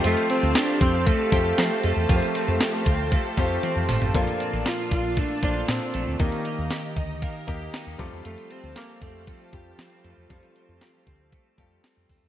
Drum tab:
HH |xxx-x-x-x-x-x-x-|xxx-x-x-x-x-x-o-|xxx-x-x-x-x-x-x-|xxx-x-x-x-x-x-x-|
TB |----x-------x---|----x-----------|----x-------x---|----x-------x---|
SD |----o-------o---|----o-----------|----o-------o---|----o-------o---|
T1 |----------------|------------o---|----------------|----------------|
T2 |----------------|--------------o-|----------------|----------------|
FT |----------------|---------------o|----------------|----------------|
BD |------o-o-o-----|o-----o-o-o-----|o-----o-o-o-----|o-----o-o-o---o-|

HH |xxx-x-x-x-x-x-x-|xxx-x-x-x-x-x-o-|
TB |----x-------x---|----x-------x---|
SD |----o-------o---|----o-------o---|
T1 |----------------|----------------|
T2 |----------------|----------------|
FT |----------------|----------------|
BD |------o-o-o-----|o-----o-o-o---o-|